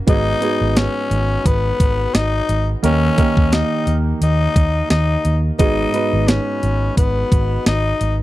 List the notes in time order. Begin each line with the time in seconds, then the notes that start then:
0.07 G#1 G#2 B3 D#4 F#4 G#4, kick, closed hi-hat
0.41 B3 D#4 F#4 G#4, closed hi-hat
0.61 G#1
0.77 C#4, snare, closed hi-hat
1.11 G#1, closed hi-hat
1.45 G#1 B3, kick, closed hi-hat
1.80 G#1, kick, closed hi-hat
2.14 G#1 D#4, snare, closed hi-hat
2.49 G#1, closed hi-hat
2.83 D#2 D#3 A#3 C#4 D#4 G4 A#4, closed hi-hat
3.17 A#3 D#4 G4 A#4, kick, closed hi-hat
3.37 D#2, kick
3.52 D#4, snare, closed hi-hat
3.87 D#2, closed hi-hat
4.21 D#2 D#4, closed hi-hat
4.56 D#2, kick, closed hi-hat
4.90 D#2 D#4, snare, closed hi-hat
5.25 D#2, closed hi-hat
5.59 G#1 G#2 B3 D#4 F#4 G#4, kick, closed hi-hat
5.93 B3 D#4 F#4 B4, closed hi-hat
6.13 G#1
6.28 C#4, snare, closed hi-hat
6.63 G#1, closed hi-hat
6.97 G#1 B3, kick, closed hi-hat
7.32 G#1, kick, closed hi-hat
7.66 G#1 D#4, snare, closed hi-hat
8.01 G#1, closed hi-hat